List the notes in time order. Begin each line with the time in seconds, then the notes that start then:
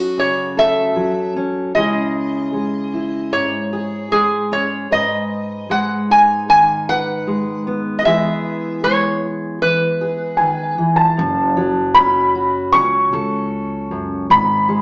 Already playing: F#2 F#3 C#4 F#4 A4 D#5
0.17 C#3 C#5
0.57 A4 E5
0.96 F#3
1.36 C#4
1.75 C#3 G#3 C#4 E4 G#4 D#5
2.53 G#3
2.94 E4
3.32 G#2 C#5
3.73 G#4
4.11 G#3 G#4
4.52 C#4 C#5
4.91 G#2 B4 D#5
5.70 G#3 F#5
6.10 D#4 G#5
6.49 D#3 G#5
6.89 B4 F#5
7.27 G#3
7.67 B3
7.99 D#5
8.05 E3 G#3 B3 E4 G#4 E5
8.84 G#3 C#5
9.62 E3 B4
10.01 G#4
10.37 D#3 G#5
10.78 E3
10.96 A5
11.17 F#1 F#2
11.57 F#3
11.95 C#4 B5
12.35 F#4
12.72 C#2 C#4 C#6
13.12 C#2 A4
13.91 F#2
14.30 G#1 G#2 B5
14.69 G#3